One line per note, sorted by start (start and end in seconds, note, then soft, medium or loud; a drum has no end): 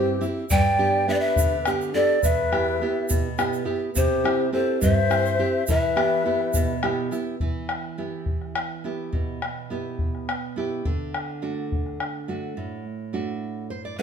0.00 0.19 G2 medium
0.00 0.20 C4 medium
0.00 0.20 E4 soft
0.00 0.20 G4 medium
0.00 0.25 G4 medium
0.00 0.26 C5 medium
0.21 0.44 C4 soft
0.21 0.44 E4 soft
0.21 0.44 G4 medium
0.21 shaker soft
0.50 1.06 G2 medium
0.50 1.09 D5 medium
0.50 1.11 G5 loud
0.50 bombo low medium
0.50 shaker medium
0.78 1.07 B3 medium
0.78 1.07 D4 soft
0.78 1.08 G4 medium
1.08 1.54 B3 soft
1.08 1.54 D4 soft
1.08 1.55 G4 medium
1.08 1.14 B4 medium
1.08 1.15 E5 medium
1.08 bombo rim soft
1.14 1.23 B4 medium
1.14 1.21 D5 medium
1.20 1.66 B4 medium
1.20 1.65 E5 loud
1.36 1.93 D3 medium
1.36 bombo low medium
1.36 shaker medium
1.65 1.93 B3 medium
1.65 1.93 D4 soft
1.65 1.94 G4 medium
1.65 bombo rim medium
1.65 shaker soft
1.81 shaker soft
1.94 2.18 B3 medium
1.94 2.18 D4 soft
1.94 2.18 G4 medium
1.94 2.21 A4 medium
1.94 2.21 D5 medium
2.21 2.79 E2 medium
2.21 3.05 B4 medium
2.21 3.06 E5 loud
2.21 bombo low medium
2.21 shaker medium
2.52 2.80 B3 soft
2.52 2.81 E4 soft
2.52 2.81 G4 medium
2.52 bombo rim medium
2.81 3.27 B3 medium
2.81 3.28 E4 soft
2.81 3.28 G4 medium
2.81 bombo rim soft
3.09 3.66 B2 medium
3.09 bombo low medium
3.09 shaker medium
3.38 3.64 B3 medium
3.38 3.64 E4 soft
3.38 3.65 G4 medium
3.38 bombo rim medium
3.38 shaker soft
3.53 shaker soft
3.65 3.89 B3 soft
3.65 3.89 E4 soft
3.65 3.90 G4 medium
3.95 4.51 C3 medium
3.95 4.49 G4 medium
3.95 4.50 C5 medium
3.95 bombo low medium
3.95 shaker medium
4.24 4.51 C4 soft
4.24 4.52 E4 soft
4.24 4.52 G4 medium
4.24 bombo rim medium
4.53 4.99 C4 medium
4.53 4.99 E4 soft
4.53 4.99 G4 medium
4.53 4.80 A4 medium
4.53 4.80 C5 medium
4.53 bombo rim soft
4.81 5.38 G2 medium
4.81 5.64 C5 loud
4.81 5.65 E5 loud
4.81 bombo low medium
4.81 shaker medium
5.10 5.38 C4 soft
5.10 5.38 E4 soft
5.10 5.39 G4 medium
5.10 bombo rim medium
5.10 shaker soft
5.26 shaker soft
5.39 5.62 C4 medium
5.39 5.62 E4 soft
5.39 5.63 G4 medium
5.67 6.24 E3 medium
5.67 6.79 B4 medium
5.67 6.80 E5 medium
5.67 bombo low medium
5.67 shaker medium
5.96 6.24 B3 medium
5.96 6.24 E4 soft
5.96 6.25 G4 medium
5.96 bombo rim medium
6.25 6.72 B3 medium
6.25 6.72 E4 soft
6.25 6.72 G4 medium
6.41 bombo rim soft
6.54 7.11 B2 medium
6.54 bombo rim soft
6.54 bombo low medium
6.54 shaker medium
6.83 7.10 B3 medium
6.83 7.11 E4 soft
6.83 7.11 G4 medium
6.83 bombo rim medium
7.11 7.34 B3 soft
7.11 7.35 E4 soft
7.11 7.35 G4 medium
7.11 bombo rim soft
7.11 shaker soft
7.40 9.09 E3 medium
7.40 bombo low medium
7.69 bombo rim medium
7.84 bombo rim soft
7.98 8.54 B3 soft
7.98 8.54 E4 soft
7.98 8.54 G4 soft
8.26 bombo low medium
8.42 bombo rim soft
8.55 bombo rim medium
8.84 9.40 B3 soft
8.84 9.40 E4 soft
8.84 9.41 G4 soft
9.13 10.81 B2 medium
9.13 bombo low medium
9.42 bombo rim medium
9.56 bombo rim soft
9.70 10.26 B3 soft
9.70 10.26 E4 soft
9.70 10.26 G4 medium
9.99 bombo low medium
10.15 bombo rim soft
10.29 bombo rim medium
10.56 10.84 B3 soft
10.56 10.85 E4 soft
10.56 10.85 G4 soft
10.85 12.53 D3 medium
10.85 bombo low medium
11.14 bombo rim medium
11.30 bombo rim soft
11.42 11.98 A3 soft
11.42 11.98 D4 soft
11.42 11.98 F#4 medium
11.72 bombo low medium
11.86 bombo rim soft
12.00 bombo rim medium
12.28 12.83 A3 soft
12.28 12.84 D4 soft
12.28 12.84 F#4 medium
12.57 13.98 A2 medium
13.13 13.69 A3 soft
13.13 13.69 D4 soft
13.13 13.69 F#4 medium
13.70 13.84 C5 medium
13.85 13.98 D5 medium
13.99 14.02 A3 soft
13.99 14.02 D4 soft
13.99 14.02 G4 medium
13.99 14.02 B4 medium